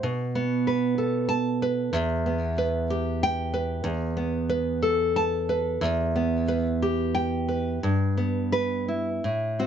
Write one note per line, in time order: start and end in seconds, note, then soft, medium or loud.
0.03 1.91 B2 medium
0.35 1.30 B3 medium
0.67 1.28 B4 medium
0.98 1.94 A4 medium
1.29 1.81 A5 loud
1.62 1.94 B4 medium
1.93 3.81 E2 loud
2.26 3.23 B3 medium
2.58 3.52 B4 medium
2.90 3.86 G4 medium
3.23 3.73 G5 loud
3.54 3.86 B4 medium
3.84 5.77 E2 loud
4.17 5.16 B3 medium
4.49 5.48 B4 medium
4.82 5.81 A4 medium
5.16 5.68 A5 loud
5.49 5.82 B4 medium
5.81 7.78 E2 loud
6.16 7.15 B3 medium
6.48 7.47 B4 medium
6.82 7.83 G4 medium
7.15 7.68 G5 loud
7.49 7.82 B4 medium
7.83 9.18 G2 loud
8.17 9.22 B3 medium
8.52 9.08 B4 loud
8.88 9.23 E4 medium
9.24 9.67 A2 medium
9.59 9.67 C4 medium
9.59 9.67 F#4 medium